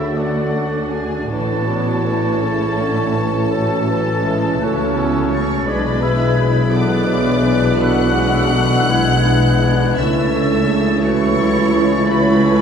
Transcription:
0.00 1.13 D2 medium
0.00 1.30 D2 medium
0.00 1.31 D2 medium
0.00 0.15 C#3 soft
0.00 1.27 D3 medium
0.00 1.27 A3 medium
0.00 1.28 A3 medium
0.00 1.27 C#4 medium
0.00 0.17 E4 medium
0.00 0.19 E4 soft
0.00 1.31 F#4 medium
0.00 2.38 F#4 medium
0.00 0.20 E5 medium
0.00 1.29 A6 medium
0.16 1.01 D3 medium
0.16 2.37 D4 medium
0.16 0.92 F#4 medium
0.16 1.03 D5 medium
0.16 0.93 F#5 medium
0.91 1.29 G#4 medium
0.91 1.30 G#5 medium
1.29 4.58 A1 medium
1.29 4.64 A1 medium
1.29 4.59 A2 medium
1.29 5.51 E3 medium
1.29 1.66 E3 medium
1.29 1.66 A3 medium
1.29 5.51 A3 medium
1.29 5.51 C#4 medium
1.29 2.41 E4 medium
1.29 5.29 A4 medium
1.29 3.48 C#5 medium
1.29 5.33 A5 medium
1.29 3.20 A6 medium
1.66 2.06 F#3 medium
1.66 2.03 B3 medium
2.02 2.45 E3 medium
2.02 3.51 A3 medium
2.40 2.81 C#3 medium
2.40 3.50 C#4 medium
2.40 3.25 E4 medium
2.40 5.51 E4 medium
2.79 3.19 D3 medium
3.18 3.54 E3 medium
3.51 3.89 F#3 medium
3.51 3.88 A3 medium
3.51 4.58 C#4 medium
3.51 4.60 C#4 medium
3.51 4.60 A4 medium
3.51 4.60 A6 medium
3.88 4.26 E3 medium
3.88 4.25 F#3 medium
4.23 4.65 E3 medium
4.23 4.61 G#3 medium
4.59 5.68 C#2 medium
4.59 5.67 C#2 medium
4.59 5.68 C#3 medium
4.59 4.98 A3 medium
4.59 5.67 C#4 medium
4.59 5.66 C#4 medium
4.59 4.98 F#6 medium
4.63 5.70 F#3 medium
4.63 5.67 C#5 medium
4.96 5.33 B3 medium
4.96 5.33 E6 medium
5.30 5.67 A3 medium
5.30 5.67 C#5 medium
5.30 5.68 C#6 medium
5.30 5.67 A6 medium
5.65 9.93 B1 medium
5.65 9.81 B1 medium
5.65 9.94 B2 medium
5.65 9.94 E3 medium
5.65 6.74 E3 medium
5.65 6.73 G#3 medium
5.65 9.98 G#3 medium
5.65 6.02 D4 medium
5.65 11.00 D4 medium
5.65 9.94 E4 medium
5.65 7.79 G#4 medium
5.65 6.70 B4 medium
5.65 6.05 D5 medium
5.65 6.71 B5 medium
5.65 6.73 G#6 medium
6.01 6.35 E4 medium
6.01 6.36 E5 medium
6.36 6.72 E4 medium
6.36 9.69 B4 medium
6.72 7.09 D3 medium
6.72 7.76 B3 medium
6.72 7.07 D4 medium
6.72 7.76 D5 medium
6.72 7.78 D6 loud
6.72 7.78 F#6 medium
7.07 7.45 F#3 medium
7.07 7.43 E4 medium
7.41 7.77 E3 medium
7.41 7.76 D4 medium
7.77 8.17 D3 medium
7.77 8.14 B3 medium
7.77 8.88 D4 medium
7.77 8.88 F#4 medium
7.77 9.98 F#5 loud
7.77 8.88 E6 medium
7.77 9.98 F#6 loud
8.15 8.54 C#3 medium
8.15 8.52 G#3 medium
8.52 8.93 D3 medium
8.52 8.91 F#3 medium
8.89 10.78 E3 medium
8.89 9.98 G#3 medium
8.89 9.26 E4 medium
8.89 9.25 E4 medium
8.89 9.98 G#6 medium
9.25 9.64 D4 medium
9.25 9.62 E4 medium
9.62 9.98 D4 medium
9.62 9.95 E4 medium
9.95 12.61 C#2 medium
9.95 11.02 A3 medium
9.95 11.03 C#4 medium
9.95 10.31 E4 medium
9.95 12.61 E4 medium
9.95 12.61 C#5 medium
9.95 11.00 E5 medium
9.95 11.04 E6 medium
9.95 12.61 A6 medium
9.99 12.61 E3 medium
9.99 12.61 A3 medium
10.32 10.68 A4 medium
10.67 11.02 G#4 medium
11.02 12.11 E3 medium
11.02 11.38 A3 medium
11.02 12.61 C#4 medium
11.02 12.08 E4 medium
11.02 11.39 F#4 medium
11.02 12.09 C#5 medium
11.02 12.10 C#6 loud
11.38 11.74 F#3 medium
11.38 11.73 E4 medium
11.73 12.10 G#3 medium
11.73 12.61 E4 medium
12.07 12.44 F#3 medium
12.07 12.61 A3 medium
12.07 12.61 E4 medium
12.07 12.61 B4 medium
12.07 12.61 B5 loud
12.45 12.61 E3 medium

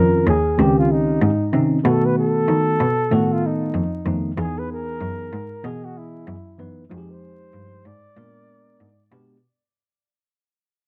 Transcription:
0.00 0.27 F2 medium
0.00 0.25 D#3 medium
0.00 0.25 C4 medium
0.00 0.25 C#4 medium
0.00 0.29 F4 medium
0.00 0.28 A#4 medium
0.27 0.57 D#2 medium
0.27 0.57 G#4 medium
0.58 1.19 C#2 medium
0.58 1.29 D#3 medium
0.58 1.29 C4 medium
0.58 1.29 C#4 medium
0.58 1.30 G4 medium
0.58 0.77 G4 medium
0.78 0.93 F4 medium
0.92 1.54 D#4 medium
1.22 1.52 G#2 loud
1.53 1.84 C3 medium
1.53 1.77 D#3 medium
1.53 1.78 C4 medium
1.53 1.78 C#4 medium
1.53 1.78 D#4 medium
1.84 2.45 B2 loud
1.84 2.78 D#3 medium
1.84 2.78 A3 medium
1.84 2.78 B3 medium
1.84 2.79 F#4 medium
1.84 1.89 G#4 medium
1.88 2.07 A4 loud
2.06 2.18 B4 loud
2.19 3.15 A4 loud
2.48 2.78 D#3 medium
2.80 3.10 B2 medium
3.11 3.71 A2 medium
3.11 3.82 D#3 medium
3.11 3.82 A3 medium
3.11 3.82 B3 medium
3.11 3.34 F#4 medium
3.11 3.82 A4 medium
3.33 3.48 F4 medium
3.46 4.08 D#4 medium
3.75 4.05 F2 medium
4.06 4.36 F2 medium
4.06 4.30 D#3 medium
4.06 4.31 A3 medium
4.06 4.31 B3 medium
4.06 4.31 D#4 medium
4.37 4.98 E2 loud
4.37 5.30 E3 medium
4.37 5.30 B3 medium
4.37 5.31 D#4 medium
4.37 5.31 G#4 medium
4.41 4.60 G#4 loud
4.59 4.71 B4 loud
4.72 5.62 A#4 loud
5.01 5.31 F#2 loud
5.33 5.64 G#2 medium
5.63 6.24 B2 loud
5.63 6.34 E3 medium
5.63 6.34 B3 medium
5.63 6.35 G#4 medium
5.63 5.86 G#4 medium
5.63 6.35 D#5 medium
5.84 5.99 F#4 medium
5.97 6.60 E4 medium
6.28 6.57 F#2 loud
6.58 6.89 F#2 medium
6.58 6.83 E3 medium
6.58 6.83 B3 medium
6.58 6.83 D#4 medium
6.58 6.84 B4 medium
6.89 7.51 F2 loud
6.89 7.83 F3 medium
6.89 7.83 G#3 medium
6.89 7.83 D#4 medium
6.89 6.98 F#4 medium
6.89 7.12 G#4 medium
6.98 7.87 G4 medium
7.11 7.88 C5 loud
7.54 7.84 G2 medium
7.85 8.15 G#2 medium
7.85 9.12 D5 loud
8.16 8.77 A#2 loud
8.16 8.87 G#3 medium
8.16 8.87 B3 medium
8.16 8.87 D4 medium
8.16 8.88 A#4 medium
8.80 9.10 G#2 medium
9.11 9.42 B2 loud
9.11 9.36 G#3 medium
9.11 9.36 B3 medium
9.11 9.36 D4 medium
9.11 9.36 G4 medium

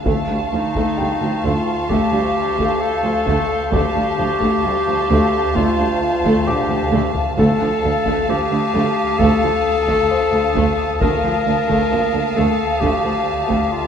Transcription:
0.06 0.14 D2 medium
0.06 3.69 D2 medium
0.06 0.28 A3 medium
0.06 3.69 F5 soft
0.06 3.69 A5 soft
0.06 6.89 C6 soft
0.06 5.98 C#6 soft
0.06 taiko medium
0.29 0.37 D2 soft
0.29 0.37 G3 soft
0.53 0.61 D2 soft
0.53 0.61 F3 soft
0.53 1.46 D#4 medium
0.76 0.84 D2 medium
0.76 0.98 A3 medium
0.76 taiko medium
0.98 1.07 D2 soft
0.98 1.07 G3 soft
0.98 3.68 G5 soft
1.21 1.29 D2 soft
1.21 1.31 F3 soft
1.44 1.53 D2 medium
1.44 1.66 A3 medium
1.44 1.91 F4 medium
1.89 1.98 D2 medium
1.89 2.12 A3 medium
1.89 2.83 G4 medium
1.89 6.89 G6 soft
1.89 taiko medium
2.12 2.20 D2 soft
2.12 2.21 G3 soft
2.59 2.67 D2 medium
2.59 2.80 A3 medium
2.59 taiko medium
2.81 3.72 A4 medium
3.04 3.12 D2 soft
3.04 3.12 F3 soft
3.27 3.35 D2 medium
3.27 3.48 A3 medium
3.27 taiko medium
3.72 3.80 D2 medium
3.72 3.81 D2 medium
3.72 7.34 D2 medium
3.72 3.94 A3 medium
3.72 5.57 G4 medium
3.72 7.34 F5 medium
3.72 7.34 A5 medium
3.72 taiko medium
3.96 4.04 D2 soft
3.96 4.04 G3 soft
4.18 4.26 D2 soft
4.18 4.27 D2 soft
4.18 4.26 F3 soft
4.41 4.49 D2 medium
4.41 4.62 A3 medium
4.41 taiko medium
4.64 4.72 D2 soft
4.64 4.72 G3 soft
4.87 4.95 D2 soft
4.87 4.96 F3 soft
5.10 5.18 D2 medium
5.10 5.31 A3 medium
5.56 5.64 D2 medium
5.56 5.77 A3 medium
5.56 6.01 F4 medium
5.56 taiko medium
5.78 5.87 D2 soft
5.78 5.86 G3 soft
6.01 6.48 F4 medium
6.24 6.32 D2 medium
6.24 6.45 A3 medium
6.24 taiko medium
6.47 9.16 D4 soft
6.47 7.10 G4 medium
6.47 9.16 D6 soft
6.47 taiko mid medium
6.70 6.78 D2 soft
6.70 6.78 F3 soft
6.70 taiko mid medium
6.92 7.01 D2 medium
6.92 7.13 A3 medium
6.92 taiko mid medium
7.15 taiko low medium
7.38 7.46 D2 medium
7.38 10.97 D2 medium
7.38 7.46 D2 medium
7.38 7.59 A3 medium
7.38 8.31 A4 medium
7.38 10.97 F5 medium
7.38 10.97 A5 medium
7.38 13.87 A5 soft
7.38 taiko medium
7.61 7.69 D2 soft
7.61 7.69 F3 soft
7.83 7.91 D2 medium
7.83 7.92 D2 soft
7.83 7.92 D3 soft
8.06 8.14 D2 medium
8.06 8.27 A3 medium
8.06 taiko medium
8.28 8.36 D2 soft
8.28 8.37 D2 soft
8.28 8.37 F3 soft
8.28 9.21 G4 medium
8.28 13.87 D#6 soft
8.52 8.60 D2 soft
8.52 8.60 D3 soft
8.74 8.82 D2 medium
8.74 8.95 A3 medium
9.19 9.27 D2 medium
9.19 9.28 D2 medium
9.19 9.41 A3 medium
9.19 11.00 A4 medium
9.19 taiko medium
9.42 9.50 D2 soft
9.42 9.50 F3 soft
9.87 9.95 D2 medium
9.87 10.08 A3 medium
9.87 taiko medium
10.11 12.78 C5 soft
10.32 10.40 D2 soft
10.32 10.41 D3 soft
10.55 10.63 D2 medium
10.55 10.64 D2 medium
10.55 10.76 A3 medium
10.55 taiko medium
11.00 13.87 D2 medium
11.00 11.09 D2 medium
11.00 11.10 D2 medium
11.00 11.22 A3 medium
11.00 12.38 A#4 medium
11.00 13.87 F5 medium
11.00 13.87 A5 soft
11.00 taiko medium
11.24 11.32 D2 soft
11.24 11.32 F3 soft
11.46 11.54 D2 soft
11.46 11.55 D2 soft
11.46 11.54 D3 soft
11.68 11.77 D2 medium
11.68 11.90 A3 medium
11.68 taiko medium
11.91 11.99 D2 soft
11.91 12.00 D2 soft
11.91 11.99 F3 soft
11.91 13.87 A#3 soft
12.14 12.22 D2 soft
12.14 12.22 D3 soft
12.36 12.45 D2 medium
12.36 12.57 A3 medium
12.36 12.82 A4 medium
12.80 12.90 D2 medium
12.80 13.02 A3 medium
12.80 13.73 G4 medium
12.80 taiko medium
13.03 13.12 D2 soft
13.03 13.11 F3 soft
13.48 13.58 D2 medium
13.48 13.70 A3 medium
13.48 taiko medium
13.72 13.87 F4 medium

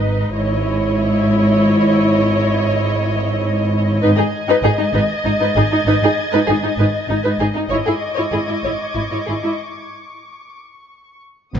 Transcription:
0.00 0.30 G#1 soft
0.00 0.30 G#2 soft
0.00 0.31 D#4 soft
0.00 0.31 B4 soft
0.00 0.30 D#5 soft
0.34 3.99 G#1 soft
0.34 3.99 G#2 medium
0.34 3.99 E4 medium
0.34 3.99 C#5 medium
0.34 3.99 D#5 medium
4.02 4.08 G#1 medium
4.02 4.09 G#2 medium
4.02 4.09 D#4 medium
4.02 4.09 B4 medium
4.02 7.67 D#5 medium
4.02 7.37 G#6 soft
4.17 4.24 G#2 soft
4.17 4.24 D#4 soft
4.17 4.23 G#4 medium
4.48 4.54 G#2 medium
4.48 4.55 D#4 medium
4.48 4.56 B4 medium
4.63 4.69 G#1 soft
4.63 4.70 G#2 soft
4.63 4.70 D#4 soft
4.63 4.70 G#4 medium
4.63 7.37 A6 soft
4.78 4.86 G#2 soft
4.78 4.85 D#4 soft
4.94 5.01 G#1 medium
4.94 5.00 G#2 medium
4.94 5.00 D#4 medium
4.94 5.00 B4 medium
5.25 5.31 G#1 soft
5.25 5.31 G#2 soft
5.25 5.31 D#4 soft
5.25 5.31 D#4 medium
5.40 5.46 G#2 medium
5.40 5.46 D#4 medium
5.40 5.47 B4 medium
5.55 5.62 G#1 soft
5.55 5.62 G#2 soft
5.55 5.63 D#4 medium
5.55 5.62 G#4 soft
5.71 5.77 G#2 soft
5.71 5.78 D#4 soft
5.71 5.78 D#4 medium
5.86 5.92 G#1 medium
5.86 5.93 G#2 medium
5.86 5.93 D#4 medium
5.86 5.93 B4 medium
6.02 6.08 G#2 soft
6.02 6.10 D#4 soft
6.02 6.09 G#4 soft
6.32 6.39 G#2 medium
6.32 6.40 D#4 medium
6.32 6.38 B4 medium
6.48 6.54 G#1 soft
6.48 6.54 G#2 soft
6.48 6.55 D#4 soft
6.48 6.54 G#4 soft
6.63 6.69 G#2 soft
6.63 6.69 D#4 soft
6.63 6.70 D#4 medium
6.78 6.84 G#1 medium
6.78 6.85 G#2 medium
6.78 6.86 D#4 soft
6.78 6.85 B4 medium
7.09 7.15 G#1 soft
7.09 7.16 G#2 soft
7.09 7.15 D#4 soft
7.09 7.17 D#4 soft
7.23 7.31 G#2 medium
7.23 7.31 D#4 medium
7.23 7.30 B4 soft
7.39 7.45 G#1 soft
7.39 7.46 G#2 soft
7.39 7.47 D#4 soft
7.39 7.46 G#4 soft
7.54 7.62 G#2 soft
7.54 7.61 D#4 soft
7.54 7.63 D#4 soft
7.70 7.77 G#1 soft
7.70 7.77 G#2 medium
7.70 7.78 E4 medium
7.70 7.76 C#5 medium
7.70 9.57 D#5 soft
7.70 11.20 C#6 soft
7.70 10.55 D6 soft
7.70 9.91 G#6 soft
7.86 7.92 G#2 soft
7.86 7.94 E4 soft
7.86 7.92 G#4 soft
8.16 8.24 G#2 soft
8.16 8.24 E4 soft
8.16 8.23 C#5 soft
8.32 8.39 G#1 soft
8.32 8.39 G#2 soft
8.32 8.40 E4 soft
8.32 8.38 G#4 soft
8.49 8.55 G#2 soft
8.49 8.55 E4 soft
8.63 8.70 G#1 soft
8.63 8.70 G#2 soft
8.63 8.71 E4 soft
8.63 8.70 C#5 soft
8.95 9.02 G#1 soft
8.95 9.02 G#2 soft
8.95 9.02 E4 soft
9.11 9.18 G#2 soft
9.11 9.18 E4 soft
9.11 9.18 C#5 soft
9.26 9.34 G#1 soft
9.26 9.35 G#2 soft
9.26 9.35 E4 soft
9.26 9.33 G#4 soft
9.43 9.50 G#2 soft
9.43 9.50 E4 soft
9.43 9.51 E4 soft
11.54 11.60 G#1 soft
11.54 11.60 G#2 soft
11.54 11.60 G#3 soft
11.54 11.60 B3 soft
11.54 11.60 D#6 soft
11.54 impact soft

